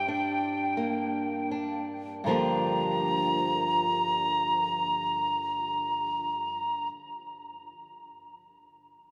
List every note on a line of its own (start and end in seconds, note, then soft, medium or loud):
0.00 2.23 G2 medium
0.00 2.30 G4 medium
0.00 1.51 G5 medium
0.08 1.51 D4 soft
0.77 2.28 A#3 soft
1.51 2.29 D4 soft
2.24 6.90 G2 medium
2.24 6.92 D3 medium
2.24 6.93 F3 medium
2.24 6.88 A#5 medium
2.29 6.95 A#3 medium
2.29 6.96 D4 medium
2.29 6.97 G4 medium